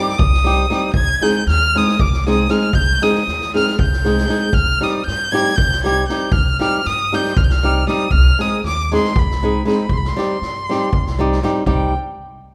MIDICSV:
0, 0, Header, 1, 5, 480
1, 0, Start_track
1, 0, Key_signature, -3, "minor"
1, 0, Tempo, 513699
1, 882, Time_signature, 7, 3, 24, 8
1, 5198, Tempo, 508906
1, 11784, End_track
2, 0, Start_track
2, 0, Title_t, "Violin"
2, 0, Program_c, 0, 40
2, 0, Note_on_c, 0, 86, 103
2, 165, Note_on_c, 0, 87, 108
2, 179, Note_off_c, 0, 86, 0
2, 868, Note_off_c, 0, 87, 0
2, 874, Note_on_c, 0, 92, 122
2, 1141, Note_on_c, 0, 91, 109
2, 1155, Note_off_c, 0, 92, 0
2, 1373, Note_off_c, 0, 91, 0
2, 1393, Note_on_c, 0, 89, 126
2, 1655, Note_on_c, 0, 87, 111
2, 1669, Note_off_c, 0, 89, 0
2, 1875, Note_on_c, 0, 86, 99
2, 1889, Note_off_c, 0, 87, 0
2, 2120, Note_off_c, 0, 86, 0
2, 2136, Note_on_c, 0, 87, 105
2, 2341, Note_on_c, 0, 89, 109
2, 2355, Note_off_c, 0, 87, 0
2, 2566, Note_on_c, 0, 91, 127
2, 2580, Note_off_c, 0, 89, 0
2, 2826, Note_on_c, 0, 87, 106
2, 2840, Note_off_c, 0, 91, 0
2, 3318, Note_off_c, 0, 87, 0
2, 3326, Note_on_c, 0, 89, 99
2, 3535, Note_off_c, 0, 89, 0
2, 3557, Note_on_c, 0, 91, 107
2, 4239, Note_on_c, 0, 89, 127
2, 4253, Note_off_c, 0, 91, 0
2, 4514, Note_on_c, 0, 87, 96
2, 4528, Note_off_c, 0, 89, 0
2, 4708, Note_on_c, 0, 91, 115
2, 4722, Note_off_c, 0, 87, 0
2, 4961, Note_on_c, 0, 92, 116
2, 4975, Note_off_c, 0, 91, 0
2, 5194, Note_on_c, 0, 91, 118
2, 5208, Note_off_c, 0, 92, 0
2, 5456, Note_off_c, 0, 91, 0
2, 5461, Note_on_c, 0, 92, 103
2, 5673, Note_off_c, 0, 92, 0
2, 5686, Note_on_c, 0, 91, 93
2, 5914, Note_on_c, 0, 89, 111
2, 5928, Note_off_c, 0, 91, 0
2, 6180, Note_off_c, 0, 89, 0
2, 6186, Note_on_c, 0, 89, 104
2, 6425, Note_on_c, 0, 87, 114
2, 6439, Note_off_c, 0, 89, 0
2, 6688, Note_on_c, 0, 91, 103
2, 6702, Note_off_c, 0, 87, 0
2, 6902, Note_on_c, 0, 89, 90
2, 6916, Note_off_c, 0, 91, 0
2, 6966, Note_on_c, 0, 91, 83
2, 6980, Note_off_c, 0, 89, 0
2, 7033, Note_on_c, 0, 89, 111
2, 7047, Note_off_c, 0, 91, 0
2, 7377, Note_off_c, 0, 89, 0
2, 7389, Note_on_c, 0, 87, 99
2, 7603, Note_on_c, 0, 89, 117
2, 7617, Note_off_c, 0, 87, 0
2, 7884, Note_on_c, 0, 87, 98
2, 7898, Note_off_c, 0, 89, 0
2, 8104, Note_off_c, 0, 87, 0
2, 8119, Note_on_c, 0, 86, 107
2, 8352, Note_off_c, 0, 86, 0
2, 8386, Note_on_c, 0, 84, 95
2, 8615, Note_on_c, 0, 83, 94
2, 8629, Note_off_c, 0, 84, 0
2, 9073, Note_off_c, 0, 83, 0
2, 9081, Note_on_c, 0, 83, 82
2, 9315, Note_on_c, 0, 84, 107
2, 9329, Note_off_c, 0, 83, 0
2, 9360, Note_on_c, 0, 83, 93
2, 9375, Note_off_c, 0, 84, 0
2, 9459, Note_on_c, 0, 84, 92
2, 9473, Note_off_c, 0, 83, 0
2, 10757, Note_off_c, 0, 84, 0
2, 10958, Note_on_c, 0, 79, 82
2, 11203, Note_off_c, 0, 79, 0
2, 11784, End_track
3, 0, Start_track
3, 0, Title_t, "Nylon-string guitar"
3, 0, Program_c, 1, 24
3, 0, Note_on_c, 1, 55, 76
3, 0, Note_on_c, 1, 60, 62
3, 0, Note_on_c, 1, 63, 63
3, 0, Note_on_c, 1, 67, 87
3, 130, Note_off_c, 1, 55, 0
3, 133, Note_off_c, 1, 60, 0
3, 137, Note_off_c, 1, 63, 0
3, 138, Note_off_c, 1, 67, 0
3, 413, Note_on_c, 1, 55, 78
3, 418, Note_on_c, 1, 60, 71
3, 428, Note_on_c, 1, 63, 78
3, 435, Note_on_c, 1, 67, 99
3, 604, Note_off_c, 1, 55, 0
3, 605, Note_off_c, 1, 60, 0
3, 611, Note_off_c, 1, 63, 0
3, 615, Note_off_c, 1, 67, 0
3, 654, Note_on_c, 1, 55, 77
3, 660, Note_on_c, 1, 60, 71
3, 661, Note_on_c, 1, 63, 78
3, 673, Note_on_c, 1, 67, 72
3, 836, Note_off_c, 1, 55, 0
3, 839, Note_off_c, 1, 63, 0
3, 840, Note_off_c, 1, 60, 0
3, 846, Note_off_c, 1, 67, 0
3, 1134, Note_on_c, 1, 56, 78
3, 1142, Note_on_c, 1, 63, 70
3, 1143, Note_on_c, 1, 60, 62
3, 1146, Note_on_c, 1, 68, 92
3, 1325, Note_off_c, 1, 56, 0
3, 1328, Note_off_c, 1, 63, 0
3, 1329, Note_off_c, 1, 60, 0
3, 1331, Note_off_c, 1, 68, 0
3, 1636, Note_on_c, 1, 56, 84
3, 1638, Note_on_c, 1, 60, 69
3, 1640, Note_on_c, 1, 63, 67
3, 1648, Note_on_c, 1, 68, 82
3, 1822, Note_off_c, 1, 56, 0
3, 1823, Note_off_c, 1, 60, 0
3, 1823, Note_off_c, 1, 63, 0
3, 1828, Note_off_c, 1, 68, 0
3, 2116, Note_on_c, 1, 56, 80
3, 2122, Note_on_c, 1, 60, 79
3, 2127, Note_on_c, 1, 63, 73
3, 2131, Note_on_c, 1, 68, 92
3, 2297, Note_off_c, 1, 56, 0
3, 2299, Note_off_c, 1, 60, 0
3, 2302, Note_off_c, 1, 63, 0
3, 2303, Note_off_c, 1, 68, 0
3, 2329, Note_on_c, 1, 56, 76
3, 2330, Note_on_c, 1, 60, 73
3, 2339, Note_on_c, 1, 63, 68
3, 2343, Note_on_c, 1, 68, 81
3, 2514, Note_off_c, 1, 60, 0
3, 2515, Note_off_c, 1, 56, 0
3, 2520, Note_off_c, 1, 63, 0
3, 2521, Note_off_c, 1, 68, 0
3, 2822, Note_on_c, 1, 56, 73
3, 2826, Note_on_c, 1, 60, 70
3, 2831, Note_on_c, 1, 63, 70
3, 2837, Note_on_c, 1, 68, 93
3, 3009, Note_off_c, 1, 56, 0
3, 3011, Note_off_c, 1, 60, 0
3, 3013, Note_off_c, 1, 63, 0
3, 3016, Note_off_c, 1, 68, 0
3, 3309, Note_on_c, 1, 56, 68
3, 3311, Note_on_c, 1, 60, 70
3, 3314, Note_on_c, 1, 63, 65
3, 3320, Note_on_c, 1, 68, 75
3, 3497, Note_off_c, 1, 60, 0
3, 3498, Note_off_c, 1, 56, 0
3, 3500, Note_off_c, 1, 63, 0
3, 3503, Note_off_c, 1, 68, 0
3, 3779, Note_on_c, 1, 56, 72
3, 3782, Note_on_c, 1, 60, 76
3, 3789, Note_on_c, 1, 63, 64
3, 3795, Note_on_c, 1, 68, 88
3, 3966, Note_off_c, 1, 56, 0
3, 3967, Note_off_c, 1, 60, 0
3, 3971, Note_off_c, 1, 63, 0
3, 3974, Note_off_c, 1, 68, 0
3, 3997, Note_on_c, 1, 56, 68
3, 3999, Note_on_c, 1, 60, 60
3, 4013, Note_on_c, 1, 63, 74
3, 4020, Note_on_c, 1, 68, 83
3, 4187, Note_off_c, 1, 56, 0
3, 4187, Note_off_c, 1, 60, 0
3, 4195, Note_off_c, 1, 63, 0
3, 4198, Note_off_c, 1, 68, 0
3, 4492, Note_on_c, 1, 55, 69
3, 4492, Note_on_c, 1, 60, 69
3, 4499, Note_on_c, 1, 63, 64
3, 4506, Note_on_c, 1, 67, 71
3, 4680, Note_off_c, 1, 60, 0
3, 4681, Note_off_c, 1, 55, 0
3, 4685, Note_off_c, 1, 63, 0
3, 4686, Note_off_c, 1, 67, 0
3, 4971, Note_on_c, 1, 55, 76
3, 4977, Note_on_c, 1, 60, 68
3, 4985, Note_on_c, 1, 63, 65
3, 4995, Note_on_c, 1, 67, 81
3, 5165, Note_off_c, 1, 55, 0
3, 5168, Note_off_c, 1, 60, 0
3, 5172, Note_off_c, 1, 63, 0
3, 5177, Note_off_c, 1, 67, 0
3, 5457, Note_on_c, 1, 55, 75
3, 5464, Note_on_c, 1, 60, 73
3, 5466, Note_on_c, 1, 63, 62
3, 5478, Note_on_c, 1, 67, 84
3, 5643, Note_off_c, 1, 55, 0
3, 5647, Note_off_c, 1, 60, 0
3, 5647, Note_off_c, 1, 63, 0
3, 5654, Note_off_c, 1, 67, 0
3, 5704, Note_on_c, 1, 55, 65
3, 5704, Note_on_c, 1, 60, 68
3, 5707, Note_on_c, 1, 63, 65
3, 5717, Note_on_c, 1, 67, 89
3, 5879, Note_off_c, 1, 60, 0
3, 5880, Note_off_c, 1, 55, 0
3, 5881, Note_off_c, 1, 63, 0
3, 5886, Note_off_c, 1, 67, 0
3, 6170, Note_on_c, 1, 55, 74
3, 6177, Note_on_c, 1, 60, 63
3, 6180, Note_on_c, 1, 63, 69
3, 6187, Note_on_c, 1, 67, 84
3, 6361, Note_off_c, 1, 55, 0
3, 6365, Note_off_c, 1, 60, 0
3, 6365, Note_off_c, 1, 63, 0
3, 6369, Note_off_c, 1, 67, 0
3, 6670, Note_on_c, 1, 55, 67
3, 6673, Note_on_c, 1, 60, 65
3, 6678, Note_on_c, 1, 63, 72
3, 6683, Note_on_c, 1, 67, 88
3, 6858, Note_off_c, 1, 55, 0
3, 6858, Note_off_c, 1, 60, 0
3, 6861, Note_off_c, 1, 63, 0
3, 6864, Note_off_c, 1, 67, 0
3, 7147, Note_on_c, 1, 55, 82
3, 7151, Note_on_c, 1, 60, 68
3, 7160, Note_on_c, 1, 63, 73
3, 7165, Note_on_c, 1, 67, 83
3, 7331, Note_off_c, 1, 55, 0
3, 7333, Note_off_c, 1, 60, 0
3, 7337, Note_off_c, 1, 63, 0
3, 7340, Note_off_c, 1, 67, 0
3, 7374, Note_on_c, 1, 55, 81
3, 7385, Note_on_c, 1, 60, 71
3, 7390, Note_on_c, 1, 63, 75
3, 7399, Note_on_c, 1, 67, 82
3, 7556, Note_off_c, 1, 55, 0
3, 7562, Note_off_c, 1, 60, 0
3, 7564, Note_off_c, 1, 63, 0
3, 7569, Note_off_c, 1, 67, 0
3, 7863, Note_on_c, 1, 56, 82
3, 7872, Note_on_c, 1, 60, 66
3, 7877, Note_on_c, 1, 63, 69
3, 7882, Note_on_c, 1, 68, 77
3, 8048, Note_off_c, 1, 56, 0
3, 8053, Note_off_c, 1, 60, 0
3, 8055, Note_off_c, 1, 63, 0
3, 8058, Note_off_c, 1, 68, 0
3, 8361, Note_on_c, 1, 56, 81
3, 8367, Note_on_c, 1, 60, 64
3, 8372, Note_on_c, 1, 63, 67
3, 8379, Note_on_c, 1, 68, 86
3, 8544, Note_off_c, 1, 56, 0
3, 8547, Note_off_c, 1, 60, 0
3, 8549, Note_off_c, 1, 63, 0
3, 8553, Note_off_c, 1, 68, 0
3, 8843, Note_on_c, 1, 56, 74
3, 8844, Note_on_c, 1, 60, 72
3, 8851, Note_on_c, 1, 63, 75
3, 8862, Note_on_c, 1, 68, 100
3, 9018, Note_off_c, 1, 60, 0
3, 9019, Note_off_c, 1, 56, 0
3, 9023, Note_off_c, 1, 63, 0
3, 9029, Note_off_c, 1, 68, 0
3, 9055, Note_on_c, 1, 56, 70
3, 9060, Note_on_c, 1, 60, 70
3, 9070, Note_on_c, 1, 63, 72
3, 9080, Note_on_c, 1, 68, 88
3, 9237, Note_off_c, 1, 56, 0
3, 9240, Note_off_c, 1, 60, 0
3, 9244, Note_off_c, 1, 63, 0
3, 9249, Note_off_c, 1, 68, 0
3, 9539, Note_on_c, 1, 55, 84
3, 9545, Note_on_c, 1, 60, 72
3, 9553, Note_on_c, 1, 63, 69
3, 9560, Note_on_c, 1, 67, 86
3, 9727, Note_off_c, 1, 55, 0
3, 9728, Note_off_c, 1, 60, 0
3, 9733, Note_off_c, 1, 63, 0
3, 9737, Note_off_c, 1, 67, 0
3, 10037, Note_on_c, 1, 55, 77
3, 10041, Note_on_c, 1, 60, 70
3, 10048, Note_on_c, 1, 63, 61
3, 10056, Note_on_c, 1, 67, 76
3, 10221, Note_off_c, 1, 55, 0
3, 10223, Note_off_c, 1, 60, 0
3, 10227, Note_off_c, 1, 63, 0
3, 10231, Note_off_c, 1, 67, 0
3, 10502, Note_on_c, 1, 55, 88
3, 10506, Note_on_c, 1, 60, 77
3, 10512, Note_on_c, 1, 63, 80
3, 10520, Note_on_c, 1, 67, 92
3, 10688, Note_off_c, 1, 55, 0
3, 10689, Note_off_c, 1, 60, 0
3, 10693, Note_off_c, 1, 63, 0
3, 10697, Note_off_c, 1, 67, 0
3, 10733, Note_on_c, 1, 55, 83
3, 10740, Note_on_c, 1, 60, 81
3, 10741, Note_on_c, 1, 63, 87
3, 10744, Note_on_c, 1, 67, 94
3, 10915, Note_off_c, 1, 55, 0
3, 10918, Note_off_c, 1, 63, 0
3, 10919, Note_off_c, 1, 60, 0
3, 10919, Note_off_c, 1, 67, 0
3, 10954, Note_on_c, 1, 60, 78
3, 10955, Note_on_c, 1, 55, 85
3, 10958, Note_on_c, 1, 63, 84
3, 10958, Note_on_c, 1, 67, 91
3, 11201, Note_off_c, 1, 60, 0
3, 11202, Note_off_c, 1, 55, 0
3, 11202, Note_off_c, 1, 63, 0
3, 11202, Note_off_c, 1, 67, 0
3, 11784, End_track
4, 0, Start_track
4, 0, Title_t, "Upright bass"
4, 0, Program_c, 2, 32
4, 190, Note_on_c, 2, 36, 95
4, 607, Note_off_c, 2, 36, 0
4, 885, Note_on_c, 2, 36, 100
4, 1042, Note_off_c, 2, 36, 0
4, 1370, Note_on_c, 2, 39, 100
4, 1668, Note_off_c, 2, 39, 0
4, 1878, Note_on_c, 2, 36, 93
4, 2292, Note_off_c, 2, 36, 0
4, 2574, Note_on_c, 2, 36, 109
4, 2729, Note_off_c, 2, 36, 0
4, 3058, Note_on_c, 2, 39, 78
4, 3352, Note_off_c, 2, 39, 0
4, 3538, Note_on_c, 2, 36, 101
4, 3957, Note_off_c, 2, 36, 0
4, 4250, Note_on_c, 2, 36, 109
4, 4404, Note_off_c, 2, 36, 0
4, 4742, Note_on_c, 2, 43, 80
4, 5032, Note_off_c, 2, 43, 0
4, 5227, Note_on_c, 2, 36, 87
4, 5644, Note_off_c, 2, 36, 0
4, 5932, Note_on_c, 2, 36, 112
4, 6086, Note_off_c, 2, 36, 0
4, 6423, Note_on_c, 2, 43, 97
4, 6715, Note_off_c, 2, 43, 0
4, 6920, Note_on_c, 2, 36, 99
4, 7333, Note_off_c, 2, 36, 0
4, 7611, Note_on_c, 2, 36, 117
4, 7766, Note_off_c, 2, 36, 0
4, 8100, Note_on_c, 2, 39, 102
4, 8394, Note_off_c, 2, 39, 0
4, 8591, Note_on_c, 2, 36, 86
4, 9007, Note_off_c, 2, 36, 0
4, 9285, Note_on_c, 2, 36, 110
4, 9442, Note_off_c, 2, 36, 0
4, 9775, Note_on_c, 2, 43, 82
4, 10070, Note_off_c, 2, 43, 0
4, 10262, Note_on_c, 2, 36, 100
4, 10680, Note_off_c, 2, 36, 0
4, 10956, Note_on_c, 2, 36, 100
4, 11202, Note_off_c, 2, 36, 0
4, 11784, End_track
5, 0, Start_track
5, 0, Title_t, "Drums"
5, 81, Note_on_c, 9, 38, 30
5, 174, Note_off_c, 9, 38, 0
5, 180, Note_on_c, 9, 36, 108
5, 273, Note_off_c, 9, 36, 0
5, 309, Note_on_c, 9, 38, 32
5, 402, Note_off_c, 9, 38, 0
5, 439, Note_on_c, 9, 38, 28
5, 532, Note_off_c, 9, 38, 0
5, 659, Note_on_c, 9, 38, 34
5, 753, Note_off_c, 9, 38, 0
5, 876, Note_on_c, 9, 36, 102
5, 969, Note_off_c, 9, 36, 0
5, 1155, Note_on_c, 9, 38, 35
5, 1248, Note_off_c, 9, 38, 0
5, 1377, Note_on_c, 9, 38, 32
5, 1471, Note_off_c, 9, 38, 0
5, 1647, Note_on_c, 9, 38, 30
5, 1741, Note_off_c, 9, 38, 0
5, 1758, Note_on_c, 9, 38, 29
5, 1852, Note_off_c, 9, 38, 0
5, 1864, Note_on_c, 9, 36, 100
5, 1957, Note_off_c, 9, 36, 0
5, 1990, Note_on_c, 9, 38, 29
5, 2083, Note_off_c, 9, 38, 0
5, 2114, Note_on_c, 9, 38, 28
5, 2208, Note_off_c, 9, 38, 0
5, 2328, Note_on_c, 9, 38, 33
5, 2421, Note_off_c, 9, 38, 0
5, 2554, Note_on_c, 9, 36, 98
5, 2647, Note_off_c, 9, 36, 0
5, 2826, Note_on_c, 9, 38, 33
5, 2919, Note_off_c, 9, 38, 0
5, 2941, Note_on_c, 9, 38, 32
5, 3034, Note_off_c, 9, 38, 0
5, 3061, Note_on_c, 9, 38, 30
5, 3155, Note_off_c, 9, 38, 0
5, 3184, Note_on_c, 9, 38, 32
5, 3277, Note_off_c, 9, 38, 0
5, 3317, Note_on_c, 9, 38, 35
5, 3411, Note_off_c, 9, 38, 0
5, 3431, Note_on_c, 9, 38, 27
5, 3524, Note_off_c, 9, 38, 0
5, 3540, Note_on_c, 9, 36, 101
5, 3634, Note_off_c, 9, 36, 0
5, 3668, Note_on_c, 9, 38, 32
5, 3762, Note_off_c, 9, 38, 0
5, 3785, Note_on_c, 9, 38, 27
5, 3879, Note_off_c, 9, 38, 0
5, 3904, Note_on_c, 9, 38, 30
5, 3997, Note_off_c, 9, 38, 0
5, 4008, Note_on_c, 9, 38, 34
5, 4102, Note_off_c, 9, 38, 0
5, 4232, Note_on_c, 9, 36, 101
5, 4326, Note_off_c, 9, 36, 0
5, 4508, Note_on_c, 9, 38, 35
5, 4602, Note_off_c, 9, 38, 0
5, 4738, Note_on_c, 9, 38, 36
5, 4832, Note_off_c, 9, 38, 0
5, 5003, Note_on_c, 9, 38, 37
5, 5096, Note_off_c, 9, 38, 0
5, 5127, Note_on_c, 9, 38, 29
5, 5213, Note_on_c, 9, 36, 102
5, 5220, Note_off_c, 9, 38, 0
5, 5308, Note_off_c, 9, 36, 0
5, 5345, Note_on_c, 9, 38, 34
5, 5439, Note_off_c, 9, 38, 0
5, 5460, Note_on_c, 9, 38, 33
5, 5555, Note_off_c, 9, 38, 0
5, 5691, Note_on_c, 9, 38, 38
5, 5785, Note_off_c, 9, 38, 0
5, 5909, Note_on_c, 9, 36, 112
5, 6003, Note_off_c, 9, 36, 0
5, 6181, Note_on_c, 9, 38, 37
5, 6275, Note_off_c, 9, 38, 0
5, 6407, Note_on_c, 9, 38, 35
5, 6501, Note_off_c, 9, 38, 0
5, 6678, Note_on_c, 9, 38, 35
5, 6772, Note_off_c, 9, 38, 0
5, 6787, Note_on_c, 9, 38, 29
5, 6881, Note_off_c, 9, 38, 0
5, 6899, Note_on_c, 9, 36, 118
5, 6993, Note_off_c, 9, 36, 0
5, 7024, Note_on_c, 9, 38, 33
5, 7118, Note_off_c, 9, 38, 0
5, 7376, Note_on_c, 9, 38, 32
5, 7470, Note_off_c, 9, 38, 0
5, 7597, Note_on_c, 9, 36, 82
5, 7692, Note_off_c, 9, 36, 0
5, 7862, Note_on_c, 9, 38, 31
5, 7956, Note_off_c, 9, 38, 0
5, 8104, Note_on_c, 9, 38, 29
5, 8199, Note_off_c, 9, 38, 0
5, 8377, Note_on_c, 9, 38, 34
5, 8471, Note_off_c, 9, 38, 0
5, 8483, Note_on_c, 9, 38, 25
5, 8577, Note_off_c, 9, 38, 0
5, 8589, Note_on_c, 9, 36, 104
5, 8683, Note_off_c, 9, 36, 0
5, 8730, Note_on_c, 9, 38, 32
5, 8824, Note_off_c, 9, 38, 0
5, 9077, Note_on_c, 9, 38, 30
5, 9172, Note_off_c, 9, 38, 0
5, 9283, Note_on_c, 9, 36, 79
5, 9377, Note_off_c, 9, 36, 0
5, 9425, Note_on_c, 9, 38, 30
5, 9519, Note_off_c, 9, 38, 0
5, 9550, Note_on_c, 9, 38, 35
5, 9644, Note_off_c, 9, 38, 0
5, 9780, Note_on_c, 9, 38, 29
5, 9874, Note_off_c, 9, 38, 0
5, 10046, Note_on_c, 9, 38, 29
5, 10140, Note_off_c, 9, 38, 0
5, 10258, Note_on_c, 9, 36, 99
5, 10352, Note_off_c, 9, 36, 0
5, 10388, Note_on_c, 9, 38, 33
5, 10483, Note_off_c, 9, 38, 0
5, 10629, Note_on_c, 9, 38, 29
5, 10723, Note_off_c, 9, 38, 0
5, 10738, Note_on_c, 9, 38, 33
5, 10832, Note_off_c, 9, 38, 0
5, 10953, Note_on_c, 9, 36, 88
5, 11047, Note_off_c, 9, 36, 0
5, 11784, End_track
0, 0, End_of_file